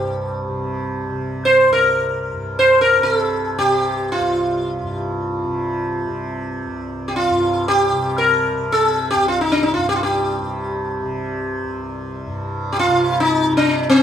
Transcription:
0.00 1.70 C2 soft
0.00 2.33 G2 medium
0.00 0.48 C3 medium
0.00 0.89 G4 medium
0.48 1.10 C3 soft
1.10 2.97 C3 medium
1.45 1.72 C5 medium
1.70 4.19 C2 medium
1.70 2.59 A#4 medium
2.33 4.81 G2 medium
2.59 2.81 C5 medium
2.81 3.03 A#4 medium
2.97 3.58 C3 medium
3.03 3.15 A#4 medium
3.15 3.58 A4 medium
3.58 5.44 C3 medium
3.58 4.11 G4 medium
4.12 6.07 F4 medium
4.19 6.66 C2 medium
4.82 7.29 G2 medium
5.44 6.06 C3 medium
6.06 7.93 C3 medium
6.67 9.15 C2 medium
7.08 7.15 G4 medium
7.16 7.68 F4 medium
7.30 9.76 G2 medium
7.68 8.19 G4 medium
7.93 8.53 C3 medium
8.18 8.73 A#4 medium
8.53 10.40 C3 medium
8.72 9.10 A4 medium
9.11 9.28 G4 medium
9.15 11.63 C2 medium
9.28 9.41 F4 medium
9.41 9.53 D#4 medium
9.52 9.64 D4 medium
9.63 9.73 D#4 medium
9.74 12.26 G2 medium
9.74 9.87 F4 medium
9.89 9.95 G4 medium
9.96 10.03 F4 medium
10.03 11.79 G4 medium
10.40 11.02 C3 medium
11.02 12.88 C3 medium
11.64 14.03 C2 medium
12.26 14.03 G2 medium
12.72 12.79 G4 medium
12.79 13.20 F4 medium
12.88 13.50 C3 medium
13.20 13.53 D#4 medium
13.50 14.03 C3 medium
13.57 13.89 D4 medium
13.89 14.03 C4 medium

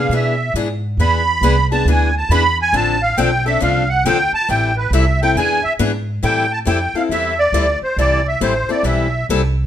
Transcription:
0.00 0.11 B3 soft
0.00 0.12 D4 medium
0.00 0.11 G#4 medium
0.00 0.13 F5 medium
0.09 0.53 B2 medium
0.09 0.33 E3 medium
0.09 0.34 B3 medium
0.09 0.34 D4 medium
0.09 0.34 G#4 medium
0.14 0.54 E5 medium
0.54 0.97 G#2 medium
0.54 0.67 E3 medium
0.54 0.67 B3 medium
0.54 0.67 D4 medium
0.54 0.67 G#4 loud
0.97 1.40 E2 medium
0.97 1.21 E3 medium
0.97 1.21 B3 medium
0.97 1.21 D4 medium
0.97 1.21 G#4 medium
0.97 1.67 B5 medium
1.41 1.84 C2 medium
1.41 1.54 E3 medium
1.41 1.55 B3 medium
1.41 1.54 D4 loud
1.41 1.55 G#4 medium
1.72 1.87 B3 soft
1.72 1.86 D4 medium
1.72 1.86 G#4 medium
1.72 1.87 A5 medium
1.85 2.28 D2 medium
1.85 2.09 E3 medium
1.85 2.09 B3 medium
1.85 2.09 D4 medium
1.85 2.09 G#4 medium
1.90 2.15 G#5 medium
2.18 2.31 A5 medium
2.29 2.72 E2 medium
2.29 2.42 E3 medium
2.29 2.42 B3 loud
2.29 2.42 D4 medium
2.29 2.42 G#4 loud
2.29 2.58 B5 loud
2.62 2.75 G#5 loud
2.73 3.16 A1 medium
2.73 2.95 D3 medium
2.73 2.95 F3 medium
2.73 2.95 C4 medium
2.73 2.95 D4 medium
2.73 2.96 A4 medium
2.73 3.02 A5 loud
3.02 3.17 F5 loud
3.18 3.60 B1 medium
3.18 3.29 D3 medium
3.18 3.29 F3 medium
3.18 3.29 C4 medium
3.18 3.29 D4 loud
3.18 3.29 A4 loud
3.18 3.44 G5 medium
3.46 3.61 C4 medium
3.46 3.61 D4 medium
3.46 3.61 A4 medium
3.46 3.61 E5 medium
3.60 4.04 C2 medium
3.60 3.82 D3 medium
3.60 3.82 F3 medium
3.60 3.83 C4 medium
3.60 3.83 D4 medium
3.60 3.83 A4 medium
3.60 3.89 F5 medium
3.89 4.04 F#5 medium
4.05 4.30 D2 medium
4.05 4.16 D3 medium
4.05 4.17 F3 medium
4.05 4.17 C4 loud
4.05 4.17 D4 medium
4.05 4.17 A4 medium
4.05 4.32 G5 loud
4.32 4.49 A5 loud
4.32 muted upright bass stroke soft
4.48 4.90 A1 medium
4.48 4.70 E3 medium
4.48 4.70 G3 medium
4.48 4.70 C4 medium
4.48 4.70 E4 medium
4.48 4.71 A4 medium
4.48 4.76 G5 medium
4.77 4.92 B4 medium
4.91 5.33 C2 medium
4.91 5.04 E3 medium
4.91 5.04 G3 medium
4.91 5.04 C4 medium
4.91 5.04 E4 medium
4.91 5.04 A4 medium
4.91 5.20 E5 medium
5.22 5.37 C4 soft
5.22 5.37 E4 medium
5.22 5.36 A4 medium
5.22 5.36 G5 loud
5.35 5.61 E2 loud
5.35 5.58 E3 medium
5.35 5.58 B3 medium
5.35 5.58 D4 medium
5.35 5.58 G#4 medium
5.35 5.64 G#5 loud
5.64 5.73 E5 loud
5.64 muted upright bass stroke soft
5.79 6.22 G#2 medium
5.79 5.91 E3 medium
5.79 5.91 B3 medium
5.79 5.91 D4 loud
5.79 5.91 G#4 loud
6.23 6.65 A2 medium
6.23 6.44 E3 medium
6.23 6.45 G3 medium
6.23 6.45 C4 medium
6.23 6.45 E4 medium
6.23 6.45 A4 medium
6.23 6.52 G5 loud
6.52 6.59 A5 medium
6.65 6.92 F2 medium
6.65 6.77 E3 medium
6.65 6.78 G3 medium
6.65 6.78 C4 medium
6.65 6.78 E4 medium
6.65 6.78 A4 medium
6.65 6.96 G5 medium
6.93 7.10 C4 soft
6.93 7.10 E4 medium
6.93 7.10 A4 medium
6.93 7.02 F5 medium
6.93 muted upright bass stroke soft
7.09 7.52 E2 medium
7.09 7.32 E3 medium
7.09 7.33 G3 medium
7.09 7.32 C4 medium
7.09 7.33 E4 medium
7.09 7.33 A4 medium
7.09 7.39 E5 medium
7.39 7.79 D5 medium
7.52 7.79 D2 medium
7.52 7.65 E3 medium
7.52 7.65 G3 medium
7.52 7.65 C4 medium
7.52 7.65 E4 medium
7.52 7.65 A4 loud
7.81 7.97 C5 medium
7.81 muted upright bass stroke soft
7.97 8.39 C2 medium
7.97 8.20 E3 medium
7.97 8.19 G3 medium
7.97 8.19 C4 medium
7.97 8.20 E4 medium
7.97 8.20 A4 medium
7.97 8.27 D5 loud
8.28 8.41 E5 medium
8.41 8.67 A1 medium
8.41 8.53 E3 medium
8.41 8.53 G3 medium
8.41 8.52 C4 medium
8.41 8.53 E4 medium
8.41 8.52 A4 medium
8.41 8.70 C5 medium
8.69 8.83 C4 soft
8.69 8.84 E4 soft
8.69 8.84 A4 medium
8.69 8.86 D5 medium
8.69 muted upright bass stroke soft
8.83 9.26 B1 medium
8.83 9.06 E3 medium
8.83 9.06 G3 medium
8.83 9.06 C4 medium
8.83 9.06 E4 medium
8.83 9.07 A4 medium
8.83 9.26 E5 medium
9.29 9.66 C2 loud
9.29 9.41 E3 medium
9.29 9.41 G3 loud
9.29 9.41 C4 medium
9.29 9.41 E4 medium
9.29 9.41 A4 loud

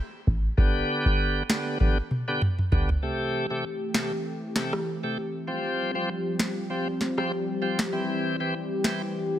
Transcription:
0.27 0.52 A1 medium
0.27 kick medium
0.57 0.83 G1 loud
0.57 1.43 D3 medium
0.57 1.43 B3 medium
0.57 1.43 G4 loud
0.57 kick loud
1.06 1.42 G1 medium
1.49 1.78 D3 medium
1.49 1.78 B3 medium
1.49 1.78 G4 medium
1.49 finger snap loud
1.49 snare loud
1.80 1.98 D3 medium
1.80 1.98 B3 medium
1.80 1.98 G4 loud
1.80 kick loud
1.80 high tom medium
2.11 mid tom medium
2.28 2.42 D3 medium
2.28 2.42 B3 medium
2.28 2.42 G4 medium
2.42 mid tom medium
2.59 mid tom medium
2.72 2.97 G1 loud
2.72 2.90 D3 medium
2.72 2.90 B3 medium
2.72 2.90 G4 medium
2.72 floor tom loud
2.89 floor tom medium
3.02 3.46 C3 medium
3.02 5.45 E3 medium
3.02 3.46 A3 medium
3.02 5.45 A3 medium
3.02 9.39 C4 medium
3.02 5.45 G4 medium
3.02 3.46 G4 loud
3.50 3.64 C3 medium
3.50 3.64 A3 medium
3.50 3.65 G4 medium
3.94 4.12 C3 medium
3.94 4.12 A3 medium
3.94 4.12 G4 medium
3.94 finger snap medium
3.94 snare loud
4.56 4.73 C3 medium
4.56 4.73 A3 medium
4.56 4.74 G4 medium
4.56 finger snap medium
4.56 snare loud
4.73 cross-stick loud
5.03 5.17 C3 medium
5.03 5.18 A3 medium
5.03 5.18 G4 medium
5.47 5.91 F3 medium
5.47 7.90 F3 medium
5.47 9.39 G3 medium
5.47 5.91 C4 medium
5.47 9.39 G4 medium
5.47 5.91 G4 medium
5.95 6.09 F3 medium
5.95 6.09 C4 medium
5.95 6.10 G4 medium
6.39 finger snap medium
6.39 snare loud
6.70 6.88 F3 medium
6.70 6.88 C4 medium
6.70 6.88 G4 loud
7.01 snare medium
7.18 7.32 F3 medium
7.18 7.32 C4 medium
7.18 7.32 G4 medium
7.18 cross-stick medium
7.62 7.79 F3 medium
7.62 7.80 C4 medium
7.62 7.80 G4 medium
7.79 finger snap medium
7.79 snare medium
7.92 9.39 E3 medium
7.92 8.36 E3 medium
7.92 8.36 C4 medium
7.92 8.36 G4 medium
8.40 8.54 E3 medium
8.40 8.54 C4 medium
8.40 8.55 G4 medium
8.84 9.02 E3 medium
8.84 9.02 C4 medium
8.84 9.02 G4 medium
8.84 finger snap loud
8.84 snare loud

